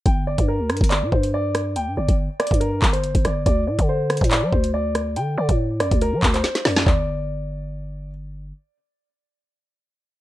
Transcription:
0.06 0.37 G1 loud
0.06 0.22 G5 medium
0.06 kick loud
0.06 closed hi-hat medium
0.27 0.43 D5 medium
0.38 0.61 G2 loud
0.38 kick medium
0.38 closed hi-hat medium
0.48 0.88 A#4 medium
0.60 0.71 D2 loud
0.70 0.80 G2 loud
0.70 cross-stick loud
0.70 closed hi-hat medium
0.77 closed hi-hat medium
0.81 1.04 G1 loud
0.81 kick loud
0.81 closed hi-hat medium
0.90 1.06 D5 medium
0.90 clap loud
0.90 closed hi-hat medium
1.02 1.12 A#2 loud
1.12 1.77 G2 loud
1.12 1.28 C5 medium
1.12 kick medium
1.23 closed hi-hat medium
1.34 1.74 D5 medium
1.55 cross-stick loud
1.55 closed hi-hat medium
1.76 1.89 D2 loud
1.76 1.92 G5 loud
1.76 closed hi-hat medium
1.87 1.97 G2 loud
1.97 2.08 G1 loud
1.97 2.13 D5 medium
2.08 2.29 G1 loud
2.08 kick medium
2.08 closed hi-hat medium
2.40 2.56 D5 medium
2.40 cross-stick loud
2.40 closed hi-hat medium
2.47 closed hi-hat medium
2.51 2.81 G2 loud
2.51 kick loud
2.51 closed hi-hat medium
2.60 2.91 A#4 medium
2.60 closed hi-hat medium
2.82 3.14 G1 loud
2.82 kick medium
2.82 clap loud
2.93 3.23 C5 medium
2.93 closed hi-hat medium
3.04 closed hi-hat medium
3.15 3.24 G1 loud
3.15 kick loud
3.15 closed hi-hat medium
3.25 3.45 G1 loud
3.25 3.41 D5 medium
3.25 cross-stick loud
3.25 closed hi-hat medium
3.46 3.69 D2 loud
3.46 3.62 D5 medium
3.46 kick loud
3.46 closed hi-hat medium
3.67 3.78 A2 loud
3.67 3.84 D5 medium
3.79 4.20 D3 loud
3.79 kick medium
3.79 closed hi-hat medium
3.89 4.29 C5 medium
4.10 cross-stick loud
4.10 closed hi-hat medium
4.17 closed hi-hat medium
4.21 4.44 A2 loud
4.21 kick loud
4.21 closed hi-hat medium
4.31 4.47 D5 medium
4.31 clap loud
4.31 closed hi-hat medium
4.42 4.52 F#3 loud
4.52 5.18 D2 loud
4.52 4.69 C5 medium
4.52 kick medium
4.64 closed hi-hat medium
4.74 5.14 D5 medium
4.95 cross-stick medium
4.95 closed hi-hat medium
5.16 5.37 D3 loud
5.16 5.33 G5 medium
5.16 closed hi-hat medium
5.38 5.48 D3 loud
5.38 5.54 D5 medium
5.49 5.82 A2 loud
5.49 kick medium
5.49 closed hi-hat medium
5.80 5.91 F#2 loud
5.80 5.96 D5 medium
5.80 cross-stick loud
5.80 closed hi-hat medium
5.91 6.14 D2 loud
5.91 kick loud
5.91 closed hi-hat medium
6.01 6.32 A#4 loud
6.01 closed hi-hat medium
6.13 6.22 F#3 loud
6.23 6.43 D2 loud
6.23 kick medium
6.23 clap loud
6.34 6.63 C5 medium
6.34 clap medium
6.34 closed hi-hat medium
6.44 snare medium
6.44 closed hi-hat medium
6.55 snare medium
6.55 closed hi-hat medium
6.65 6.86 F#2 loud
6.65 6.82 D5 medium
6.65 snare loud
6.65 open hi-hat medium
6.76 snare loud
6.86 8.53 G1 loud
6.86 8.10 D5 medium
6.86 kick loud
6.86 clap medium
6.86 floor tom loud

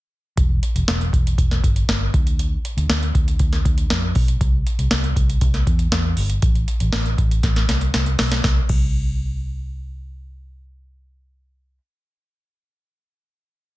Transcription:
0.37 0.58 E1 medium
0.37 kick loud
0.37 closed hi-hat medium
0.63 closed hi-hat medium
0.75 0.86 E1 medium
0.75 closed hi-hat soft
0.88 1.08 E1 medium
0.88 snare loud
0.88 closed hi-hat medium
1.01 closed hi-hat soft
1.13 1.34 E1 medium
1.13 kick medium
1.13 closed hi-hat medium
1.27 closed hi-hat soft
1.38 1.59 E1 medium
1.38 kick medium
1.38 closed hi-hat medium
1.51 snare soft
1.51 closed hi-hat soft
1.64 1.84 G1 medium
1.64 kick medium
1.64 closed hi-hat medium
1.76 closed hi-hat soft
1.88 2.09 G1 medium
1.88 snare loud
1.88 closed hi-hat medium
2.14 2.55 D2 medium
2.14 kick medium
2.14 closed hi-hat medium
2.27 closed hi-hat soft
2.39 closed hi-hat medium
2.65 closed hi-hat medium
2.77 2.87 D2 medium
2.77 closed hi-hat medium
2.90 3.10 D2 medium
2.90 snare loud
2.90 closed hi-hat medium
3.03 closed hi-hat soft
3.15 3.35 D2 medium
3.15 kick medium
3.15 closed hi-hat medium
3.28 closed hi-hat soft
3.39 3.61 D2 medium
3.39 kick medium
3.39 closed hi-hat medium
3.53 snare soft
3.53 closed hi-hat soft
3.65 3.86 D2 medium
3.65 kick medium
3.65 closed hi-hat medium
3.78 closed hi-hat soft
3.90 4.11 F2 medium
3.90 snare loud
3.90 closed hi-hat medium
4.15 4.36 B1 medium
4.15 kick medium
4.15 open hi-hat medium
4.28 closed hi-hat soft
4.41 4.62 C2 medium
4.41 kick loud
4.41 closed hi-hat medium
4.67 closed hi-hat medium
4.79 4.89 C2 medium
4.79 closed hi-hat soft
4.91 5.12 C2 medium
4.91 snare loud
4.91 closed hi-hat medium
5.04 closed hi-hat soft
5.16 5.37 C2 medium
5.16 kick medium
5.16 closed hi-hat medium
5.30 closed hi-hat medium
5.41 5.62 C2 loud
5.41 kick medium
5.41 closed hi-hat medium
5.54 snare soft
5.54 closed hi-hat soft
5.67 5.88 E2 medium
5.67 kick medium
5.67 closed hi-hat medium
5.79 closed hi-hat soft
5.92 6.13 E2 medium
5.92 snare loud
5.92 closed hi-hat medium
6.17 6.38 G1 medium
6.17 open hi-hat medium
6.30 closed hi-hat medium
6.42 6.63 A1 medium
6.42 kick loud
6.42 closed hi-hat medium
6.55 closed hi-hat soft
6.68 closed hi-hat medium
6.80 6.91 A1 medium
6.80 closed hi-hat soft
6.93 7.14 A1 medium
6.93 snare loud
6.93 closed hi-hat medium
7.06 closed hi-hat soft
7.18 7.39 A1 medium
7.18 kick medium
7.18 closed hi-hat medium
7.31 closed hi-hat medium
7.43 7.64 A1 medium
7.43 kick medium
7.43 snare medium
7.43 closed hi-hat medium
7.56 snare soft
7.56 closed hi-hat soft
7.69 7.90 C2 medium
7.69 snare medium
7.69 closed hi-hat medium
7.81 closed hi-hat soft
7.94 8.15 C2 loud
7.94 snare medium
7.94 closed hi-hat medium
8.06 closed hi-hat soft
8.19 8.40 B1 medium
8.19 snare medium
8.19 open hi-hat medium
8.32 snare medium
8.32 closed hi-hat soft
8.44 8.59 C2 medium
8.44 kick loud
8.44 snare medium
8.69 11.77 C2 medium
8.69 kick medium
8.69 crash medium

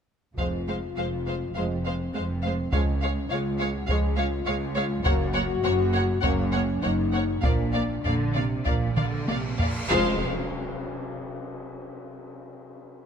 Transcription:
0.36 0.89 F1 soft
0.36 0.90 F2 soft
0.36 0.59 F3 soft
0.36 0.47 G#3 soft
0.36 0.59 G#3 soft
0.36 1.51 F4 medium
0.36 0.47 C5 soft
0.36 0.46 F5 soft
0.36 taiko soft
0.68 0.76 G#3 soft
0.68 0.76 C5 soft
0.68 0.76 F5 soft
0.96 1.49 F1 soft
0.96 1.48 F2 soft
0.96 1.05 G#3 soft
0.96 1.06 C5 soft
0.96 1.05 F5 soft
1.26 1.35 G#3 soft
1.26 1.35 C5 soft
1.26 1.34 F5 soft
1.55 2.07 F1 soft
1.55 2.07 F2 soft
1.55 1.77 F3 soft
1.55 1.65 G#3 soft
1.55 1.77 G#3 soft
1.55 2.73 C4 medium
1.55 1.64 C5 soft
1.55 1.63 F5 soft
1.84 1.94 G#3 soft
1.84 1.93 C5 soft
1.84 1.92 F5 soft
2.14 2.66 F1 soft
2.14 2.66 F2 soft
2.14 2.22 G#3 soft
2.14 2.24 C5 soft
2.14 2.22 F5 soft
2.43 2.53 G#3 soft
2.43 2.53 C5 soft
2.43 2.51 F5 soft
2.72 3.24 C#2 medium
2.72 2.94 F3 soft
2.72 2.81 G#3 soft
2.72 2.94 G#3 soft
2.72 3.30 C#4 medium
2.72 2.82 C#5 soft
2.72 2.80 F5 soft
2.72 taiko medium
3.02 3.10 G#3 soft
3.02 3.11 C#5 soft
3.02 3.10 F5 soft
3.29 3.82 C#2 medium
3.29 3.41 G#3 soft
3.29 3.74 F4 medium
3.29 3.37 C#5 soft
3.29 3.38 F5 soft
3.59 3.68 G#3 soft
3.59 3.68 C#5 soft
3.59 3.67 F5 soft
3.75 3.89 F#4 medium
3.88 4.40 C#2 medium
3.88 4.10 F3 medium
3.88 4.10 G#3 medium
3.88 3.98 G#3 medium
3.88 4.18 G#4 medium
3.88 3.97 C#5 medium
3.88 3.96 F5 soft
3.88 taiko medium
4.17 4.25 G#3 medium
4.17 5.04 F4 medium
4.17 4.25 C#5 medium
4.17 4.25 F5 soft
4.45 4.98 C#2 medium
4.45 4.55 G#3 medium
4.45 4.53 C#5 medium
4.45 4.54 F5 medium
4.75 4.84 G#3 medium
4.75 4.83 C#5 medium
4.75 4.84 F5 medium
5.04 5.57 F#1 medium
5.04 5.57 F#2 medium
5.04 5.27 F#3 medium
5.04 5.14 A#3 medium
5.04 5.27 A#3 medium
5.04 6.23 F#4 loud
5.04 5.12 C#5 medium
5.04 5.13 F#5 medium
5.04 taiko medium
5.34 5.44 A#3 medium
5.34 5.42 C#5 medium
5.34 5.42 F#5 medium
5.64 6.16 F#1 medium
5.64 6.16 F#2 medium
5.64 5.72 A#3 medium
5.64 5.72 C#5 medium
5.64 5.72 F#5 medium
5.93 6.02 A#3 medium
5.93 6.01 C#5 medium
5.93 6.01 F#5 medium
6.22 6.75 F#1 medium
6.22 6.75 F#2 medium
6.22 6.44 F#3 medium
6.22 6.31 A#3 medium
6.22 6.44 A#3 medium
6.22 6.81 C#4 medium
6.22 6.31 C#5 medium
6.22 6.31 F#5 medium
6.22 taiko medium
6.52 6.61 A#3 medium
6.52 6.61 C#5 medium
6.52 6.60 F#5 medium
6.82 7.37 F#1 medium
6.82 7.36 F#2 medium
6.82 6.92 A#3 medium
6.82 7.43 D#4 medium
6.82 6.90 C#5 soft
6.82 6.91 F#5 soft
7.13 7.21 A#3 soft
7.13 7.22 C#5 soft
7.13 7.21 F#5 soft
7.42 7.97 A#1 medium
7.42 7.97 A#2 medium
7.42 7.66 F3 medium
7.42 7.52 A#3 soft
7.42 7.66 A#3 medium
7.42 9.28 D4 medium
7.42 7.52 D5 soft
7.42 7.50 F5 medium
7.42 taiko medium
7.42 cymbal swell soft
7.73 7.83 A#3 soft
7.73 7.82 D5 soft
7.73 7.81 F5 soft
8.04 8.59 A#1 medium
8.04 8.33 D3 medium
8.04 8.15 A#3 soft
8.04 8.13 D5 soft
8.04 8.13 F5 soft
8.04 taiko low medium
8.35 8.66 C3 medium
8.35 8.45 A#3 soft
8.35 8.43 D5 soft
8.35 8.43 F5 soft
8.65 9.21 A#1 medium
8.65 8.97 A#2 medium
8.65 8.89 F3 soft
8.65 8.88 A#3 soft
8.65 8.75 A#3 soft
8.65 8.73 D5 soft
8.65 8.73 F5 soft
8.65 taiko medium
8.96 9.27 D3 medium
8.96 9.06 A#3 soft
8.96 9.04 D5 soft
8.96 9.05 F5 soft
8.96 taiko mid medium
9.28 9.83 A#1 medium
9.28 9.59 C3 medium
9.28 9.36 A#3 soft
9.28 9.36 D5 soft
9.28 9.37 F5 soft
9.28 taiko high medium
9.59 9.90 A#2 soft
9.59 9.67 A#3 soft
9.59 9.67 D5 soft
9.59 9.67 F5 soft
9.59 taiko low medium
9.90 10.25 F1 medium
9.90 10.25 F2 medium
9.90 10.18 F3 medium
9.90 10.25 G#3 medium
9.90 10.18 G#3 medium
9.90 10.17 F4 loud
9.90 10.25 C5 medium
9.90 10.25 F5 medium
9.90 tam-tam medium
9.90 impact medium

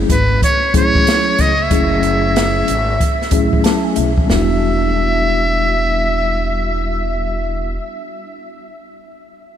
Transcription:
0.00 0.14 F#3 medium
0.00 0.14 A3 medium
0.00 0.14 C#4 medium
0.00 0.14 E4 medium
0.00 0.15 G#4 medium
0.09 0.37 G#1 medium
0.09 0.41 B4 medium
0.09 kick medium
0.09 closed hi-hat medium
0.42 0.73 C#5 medium
0.42 kick medium
0.42 closed hi-hat medium
0.73 1.01 A1 medium
0.73 1.52 F#3 medium
0.73 1.52 A3 medium
0.73 1.52 C#4 medium
0.73 1.52 E4 medium
0.73 1.53 G#4 medium
0.73 1.42 C#5 loud
0.73 kick loud
0.73 closed hi-hat medium
0.95 kick medium
1.07 snare loud
1.07 closed hi-hat medium
1.38 1.66 C#2 medium
1.38 1.64 D#5 medium
1.38 kick medium
1.38 snare soft
1.38 closed hi-hat medium
1.62 3.66 E5 medium
1.70 2.64 F#1 loud
1.70 2.72 F#3 medium
1.70 2.72 A3 medium
1.70 2.72 C#4 medium
1.70 2.72 E4 medium
1.70 2.73 G#4 medium
1.70 kick loud
1.70 closed hi-hat medium
2.03 closed hi-hat medium
2.36 snare loud
2.36 closed hi-hat medium
2.68 2.95 G#1 medium
2.68 closed hi-hat medium
3.00 kick medium
3.00 closed hi-hat medium
3.22 snare soft
3.31 3.59 A1 medium
3.31 4.10 F#3 medium
3.31 4.10 A3 medium
3.31 4.10 C#4 medium
3.31 4.11 E4 medium
3.31 4.11 G#4 medium
3.31 kick medium
3.31 closed hi-hat medium
3.53 kick medium
3.64 3.83 A5 medium
3.64 snare loud
3.64 closed hi-hat medium
3.84 3.96 G#5 medium
3.96 4.24 B1 medium
3.96 4.26 E5 medium
3.96 closed hi-hat medium
4.18 kick medium
4.25 7.71 G3 medium
4.25 7.73 B3 medium
4.25 7.74 D4 medium
4.29 7.76 E1 medium
4.29 7.76 E4 medium
4.29 7.78 F#4 medium
4.29 7.64 E5 medium
4.29 snare medium

